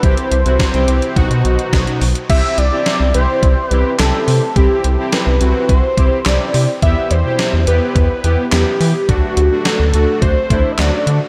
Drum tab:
CC |----------------|x---------------|----------------|----------------|
HH |xxxxxxxxxxxxxxox|x-x-x-x-x-x-x-o-|x-x-x-x-x-x-x-o-|x-x-x-x-x-x-x-o-|
CP |----------------|------------x---|------------x---|------------x---|
SD |----o-------o---|----o-------o---|----o-------o---|----o-------o---|
BD |o---o---o---o---|o-------o-------|o-------o-o-----|o-------o-------|

CC |----------------|
HH |x-x-x-x-x-x-x-x-|
CP |------------x---|
SD |----o-------o---|
BD |o-------o-o-----|